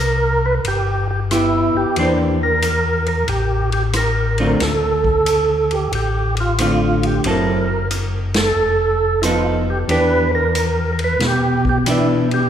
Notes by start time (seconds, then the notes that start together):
Already playing: C2 A#4
0.46 B4
0.65 G1 G4, ride
1.11 G4
1.31 B3 E4 G4, cross-stick, hi-hat pedal, ride
1.75 G1 G4
1.96 E2 E3 A#3 D4 G4 C5, ride
2.43 A#4
2.62 hi-hat pedal, ride
3.06 A#4, ride
3.27 A1 G4, ride
3.72 G4, ride
3.93 A#4, cross-stick, hi-hat pedal, ride
4.38 D3 A3 C4 F4, ride
4.60 D2 A4, snare, ride
5.04 kick
5.26 hi-hat pedal, ride
5.71 G4, ride
5.92 A1 G4, ride
6.37 F4, ride
6.58 D3 A3 C4 F4, cross-stick, hi-hat pedal, ride
7.03 G4, ride
7.24 F#1 F#3 C4 E4 A4, ride
7.29 A#4
7.91 hi-hat pedal, ride
8.34 A4, snare, ride
8.56 F1
9.22 F3 B3 D#4 E4 A4, cross-stick, hi-hat pedal, ride
9.28 F4
9.70 G4
9.88 E2 E3 B3 D4 G4 B4, ride
10.35 A#4
10.55 hi-hat pedal, ride
10.93 A#4
10.99 ride
11.04 B4
11.19 B2, snare, ride
11.27 G4
11.65 kick
11.69 G4
11.86 E3 B3 D4 E4 G4, cross-stick, hi-hat pedal, ride
12.31 G4, ride